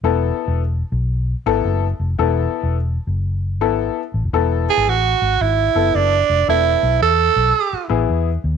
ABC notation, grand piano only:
X:1
M:4/4
L:1/8
Q:"Swing" 1/4=112
K:Emix
V:1 name="Grand piano"
[B,EA]2 z3 [B,EA]2 z | [B,EA]2 z3 [B,EA]2 z | [B,EA]2 z3 [B,EA]2 z | [B,EA]2 z3 [B,EG]2 z |]